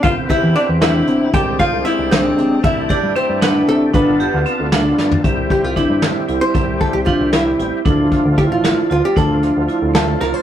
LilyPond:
<<
  \new Staff \with { instrumentName = "Hollow-body jazz guitar" } { \time 5/8 \key c \major \tempo 4 = 115 f''8 e''8 d''8 e''4 | g''8 f''8 e''8 c''4 | e''8 d''8 c''8 b'8 a'8 | b'4. r4 |
r8 g'16 f'16 e'4~ e'16 c''16~ | c''8 a'16 g'16 f'8 e'4~ | e'8 r8 g'16 f'16 e'8 f'16 g'16 | a'8 r4 a'8 bes'16 c''16 | }
  \new Staff \with { instrumentName = "Alto saxophone" } { \time 5/8 \key c \major f'8 e'8 d'8 e'4 | g'8 f'8 e'8 c'4 | e'8 d'8 c'8 b8 a8 | b4. r4 |
r2 r8 | r2 r8 | r2 r8 | r2 r8 | }
  \new Staff \with { instrumentName = "Tonewheel organ" } { \time 5/8 \key c \major <b c' e' g'>2~ <b c' e' g'>8 | <aes c' d' g'>2~ <aes c' d' g'>8 | <a d' e' g'>2~ <a d' e' g'>8 | <b d' f' a'>2~ <b d' f' a'>8 |
<g c' e' g'>2~ <g c' e' g'>8~ | <g c' e' g'>2~ <g c' e' g'>8 | <f a d' f'>2~ <f a d' f'>8~ | <f a d' f'>2~ <f a d' f'>8 | }
  \new Staff \with { instrumentName = "Vibraphone" } { \time 5/8 \key c \major c'8 g'8 c'8 d'4 | c'8 f'8 c'8 d'4 | c'8 g'8 c'8 d'4 | d'8 g'8 c'8 d'4 |
c'4 d'8 e'8 e'8 | c'4 d'8 e'8 e'8 | d'4 e'8 f'8 f'8 | d'4 e'8 f'8 f'8 | }
  \new Staff \with { instrumentName = "Analog synth bass" } { \clef bass \time 5/8 \key c \major c,8. e,16 r16 e,8. c8 | c,8. c,16 r16 c,8. c8 | c,8. g,16 r16 g,8. c8 | g,,8. d,16 r16 d,8. g,8 |
c,8 r16 c,8 g,8 r16 c,16 r16 | c,8. c,16 r16 c,8. a,,16 r16 | d,8 r16 d,8 a,,8 r16 d,16 r16 | d,8. d,16 r16 d,8. c,16 r16 | }
  \new DrumStaff \with { instrumentName = "Drums" } \drummode { \time 5/8 <hh bd>8 <hh bd sn>8 hh8 <hh sn>8 hh8 | <hh bd>8 <hh bd>8 <hh sn>8 <hh sn>8 hh8 | <hh bd>8 <hh bd>8 hh8 <hh sn>8 hh8 | <hh bd>8 hh8 hh8 <hh sn>8 sn16 tomfh16 |
<hh bd>8 <hh bd>8 <hh bd>8 <hh sn>8 hh8 | <hh bd>8 <hh bd>8 <hh bd>8 <hh sn>8 hh8 | <hh bd>8 <hh bd>8 <hh bd>8 <hh sn>8 hh8 | <hh bd>8 <hh sn>8 hh8 <hh sn>8 <hh sn>8 | }
>>